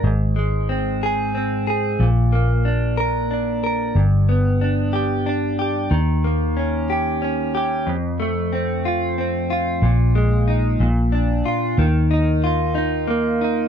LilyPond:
<<
  \new Staff \with { instrumentName = "Clean electric guitar" } { \time 6/8 \key ees \major \tempo 4. = 61 aes,8 aes8 c'8 aes'8 c'8 aes'8 | bes,8 bes8 d'8 bes'8 d'8 bes'8 | g,8 b8 d'8 g'8 d'8 g'8 | ees8 bes8 des'8 g'8 des'8 g'8 |
f,8 a8 c'8 f'8 c'8 f'8 | bes,8 aes8 ees'8 bes,8 d'8 f'8 | ees8 ees'8 f'8 ees'8 bes8 ees'8 | }
  \new Staff \with { instrumentName = "Fingered electric bass" } { \clef bass \time 6/8 \key ees \major aes,,2. | bes,,2. | g,,2. | ees,2. |
f,2. | bes,,4. bes,,4 r8 | ees,2. | }
>>